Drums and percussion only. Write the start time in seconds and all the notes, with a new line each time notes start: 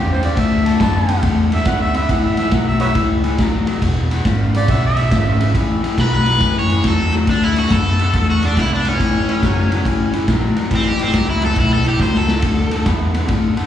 0.23 snare, ride
0.37 kick, snare, ride
0.66 snare, ride
0.80 kick, snare, ride
1.09 snare, ride
1.23 kick, snare, ride
1.52 snare, ride
1.65 kick, snare, ride
1.94 snare, ride
2.09 kick, snare, ride
2.37 snare, ride
2.51 kick, snare, ride
2.80 snare, ride
2.95 kick, snare, ride
3.24 snare, ride
3.38 kick, snare, ride
3.67 snare, ride
3.82 kick, snare, ride
4.11 snare, ride
4.25 kick, snare, ride
4.54 snare, ride
4.68 kick, snare, ride
4.97 snare, ride
5.11 kick, snare, ride
5.41 snare, ride
5.55 kick, snare, ride
5.84 snare, ride
5.98 kick, snare, ride
6.26 snare, ride
6.40 kick, snare, ride
6.70 snare, ride
6.84 kick, snare, ride
7.12 snare, ride
7.27 kick, snare, ride
7.56 snare, ride
7.70 kick, snare, ride
7.99 snare, ride
8.14 kick, snare, ride
8.42 snare, ride
8.57 kick, snare, ride
8.85 snare, ride
9.00 kick, snare, ride
9.29 snare, ride
9.43 kick, snare, ride
9.72 snare, ride
9.85 kick, snare, ride
10.13 snare, ride
10.28 kick, snare, ride
10.56 snare, ride
10.71 kick, snare, ride
10.99 snare, ride
11.14 kick, snare, ride
11.42 snare, ride
11.56 kick, snare, ride
11.85 snare, ride
12.00 kick, snare
12.14 snare
12.28 snare
12.42 kick, snare, ride
12.71 snare, ride
12.86 kick, snare, ride
13.14 snare, ride
13.28 kick, snare, ride
13.57 snare, ride